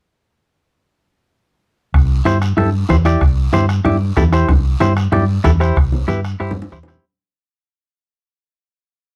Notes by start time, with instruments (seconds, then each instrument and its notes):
1.94 fingered electric bass C2, bombo low, bombo rim, long guiro
2.25 fingered electric bass G2, clean electric guitar E4 G4 C5, bombo rim, high conga, short guiro
2.42 bombo rim, short guiro
2.57 fingered electric bass G2, clean electric guitar E4 G4 A4, bombo rim, low conga, long guiro
2.89 fingered electric bass E2, clean electric guitar E4 G4 C5, bombo low, bombo rim, high conga, short guiro
3.05 clean electric guitar E4 G4 D5, bombo rim, short guiro
3.21 fingered electric bass C2, bombo low, bombo rim, long guiro
3.53 fingered electric bass G2, clean electric guitar E4 G4 C5, bombo rim, high conga, short guiro
3.69 bombo rim, short guiro
3.85 fingered electric bass G2, clean electric guitar E4 G4 D5, bombo rim, low conga, long guiro
4.17 fingered electric bass E2, clean electric guitar E4 G4 A4, bombo low, bombo rim, high conga, low conga, short guiro
4.32 clean electric guitar E4 G4 C5, bombo rim, short guiro
4.49 fingered electric bass C2, bombo low, bombo rim, low conga, long guiro
4.80 fingered electric bass G2, clean electric guitar E4 G4 C5, bombo rim, high conga, short guiro
4.97 bombo rim, short guiro
5.12 fingered electric bass G2, clean electric guitar E4 G4 D5, bombo rim, low conga, long guiro
5.44 fingered electric bass E2, clean electric guitar E4 G4 A4, bombo low, bombo rim, high conga, low conga, short guiro
5.60 clean electric guitar E4 G4 C5, bombo rim, short guiro
5.76 fingered electric bass C2, bombo low, bombo rim, long guiro
5.92 high conga
6.08 fingered electric bass G2, clean electric guitar E4 G4 B4, bombo rim, high conga, short guiro
6.24 bombo rim, short guiro
6.40 fingered electric bass G2, clean electric guitar E4 G4 C5, bombo rim, long guiro
6.51 low conga
6.62 low conga
6.72 fingered electric bass E2, clean electric guitar E4 G4 C5, bombo low, bombo rim, short guiro
6.83 low conga
6.88 clean electric guitar E4 G4 C5, bombo rim, short guiro
6.94 low conga